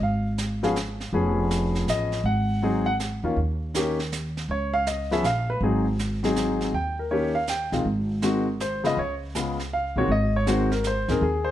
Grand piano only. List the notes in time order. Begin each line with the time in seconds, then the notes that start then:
0.03 F5
0.63 F3 B3 C#4 G#4 F5
1.13 F3 B3 C#4 G#4
1.90 D#5
2.26 F#5
2.62 F#3 C4 D#4 G#4
2.86 F#5
3.24 D#3 A#3 C#4 F4
3.74 D#3 A#3 C#4 G4
4.51 C#5
4.74 F5
4.87 D#5
5.11 F3 B3 C#4 G#4 E5
5.25 F5
5.50 B4
5.62 F#3 C4 D#4 G#4
6.23 F#3 C4 D#4 G#4
6.74 G5
6.99 A#4
7.11 D#3 A#3 C#4 G4 C#5
7.35 F5
7.49 G5
7.72 D#3 G#3 C4 F4
8.23 D#3 G#3 C4 F#4
8.61 C5
8.84 C#3 G#3 B3 F4 D#5
8.99 C#5
9.35 C#3 G#3 B3 F4
9.73 F5
9.96 D#3 G#3 C4 F#4 C#5
10.12 D#5
10.36 C#5
10.46 D#3 G#3 C4 F#4 C5
10.72 A#4
10.87 C5
11.09 D#3 G#3 C4 G#4 A#4
11.23 G#4
11.45 C5